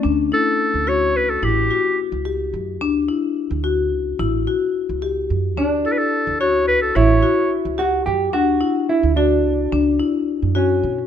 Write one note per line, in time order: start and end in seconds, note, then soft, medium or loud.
0.03 0.31 D2 medium
0.03 0.21 D4 medium
0.32 0.66 E4 medium
0.32 0.90 A4 medium
0.74 1.15 D2 medium
0.87 1.21 F#4 medium
0.87 1.18 C#5 medium
1.15 1.41 C#2 medium
1.15 1.31 B4 medium
1.30 1.46 A4 medium
1.43 1.69 A1 medium
1.43 1.60 E4 medium
1.43 1.99 G4 medium
1.71 2.04 F#4 medium
2.12 2.51 C#2 medium
2.25 2.59 G4 medium
2.54 2.81 F#2 medium
2.81 3.07 D2 medium
2.81 2.98 D4 medium
3.08 3.42 E4 medium
3.51 3.92 D2 medium
3.64 3.97 F#4 medium
3.92 4.18 C#2 medium
4.19 4.45 A1 medium
4.19 4.36 E4 medium
4.47 4.81 F#4 medium
4.89 5.28 C#2 medium
5.02 5.36 G4 medium
5.30 5.58 F#2 medium
5.57 5.84 D2 medium
5.57 5.74 D4 medium
5.57 6.45 D4 medium
5.85 6.19 E4 medium
5.85 5.93 A4 medium
5.92 6.00 B4 medium
5.98 6.40 A4 medium
6.27 6.69 D2 medium
6.40 6.74 F#4 medium
6.40 6.66 C#5 medium
6.45 6.92 C#4 medium
6.68 6.95 C#2 medium
6.68 6.81 B4 medium
6.82 6.97 A4 medium
6.95 7.22 A1 medium
6.95 7.12 E4 medium
6.95 7.75 E4 medium
6.95 7.52 C#5 medium
7.23 7.56 F#4 medium
7.65 8.04 C#2 medium
7.78 8.05 F#4 medium
7.78 8.12 G4 medium
8.06 8.34 F#2 medium
8.06 8.32 G4 medium
8.33 8.60 D2 medium
8.33 8.50 D4 medium
8.33 8.86 F#4 medium
8.61 8.95 E4 medium
8.89 9.16 E4 medium
9.03 9.45 D2 medium
9.16 10.52 D4 medium
9.16 9.51 F#4 medium
9.45 9.71 C#2 medium
9.72 9.99 C#2 medium
9.72 9.89 D4 medium
9.99 10.33 E4 medium
10.42 10.82 F#2 medium
10.55 11.07 C#4 medium
10.55 10.89 F#4 medium
10.83 10.97 B2 medium